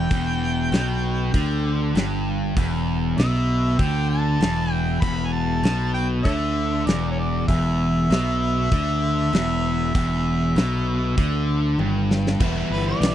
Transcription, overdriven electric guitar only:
0.11 E2
0.72 B2
1.34 D3
1.95 G2
2.57 E2
3.18 B2
3.79 D3
4.41 E2
5.02 E2
5.63 B2
6.25 D3
6.87 E2
7.48 E2
8.10 B2
8.72 D3
9.33 E2
9.95 E2
10.56 B2
11.18 D3
11.79 G2
12.40 E3 G3 B3 E4

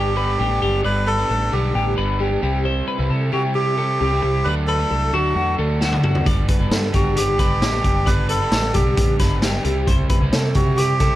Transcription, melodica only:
Already playing: G4
0.85 B4
1.07 A4
1.53 G4
3.33 F#4
3.55 G4
4.44 B4
4.67 A4
5.13 F#4
6.95 F#4
7.17 G4
8.06 B4
8.29 A4
8.74 G4
10.55 F#4
10.77 G4

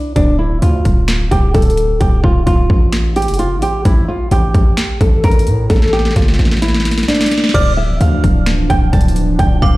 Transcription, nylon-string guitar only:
Already playing: D4
0.16 D4
0.39 E4
0.62 F4
1.31 G4
1.54 A4
2.00 G4
2.24 F4
2.46 F4
3.16 G4
3.39 F4
3.62 G4
3.85 E4
4.08 F4
4.32 G4
5.01 A4
5.24 A#4
5.70 A4
5.93 G4
6.16 F4
6.62 E4
7.08 D4
7.54 D5
7.77 E5
8.00 F5
8.70 G5
8.93 A5
9.39 G5
9.62 F5

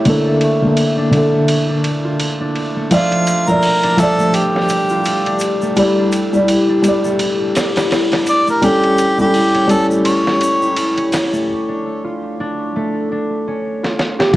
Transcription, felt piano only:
0.05 D3 A#3 A4
0.62 D3 A#3 A4
1.11 D3
1.17 A4
2.91 F3 D5 E5
3.48 F3 D5 E5
3.97 F3 E5
4.03 D5
5.76 G3 E4 D5
6.33 G3 E4 D5
6.82 G3 E4
6.88 D5
8.62 G3 C#4 A4
9.18 G3 C#4 A4
9.67 G3 C#4
9.73 A4
14.33 F3

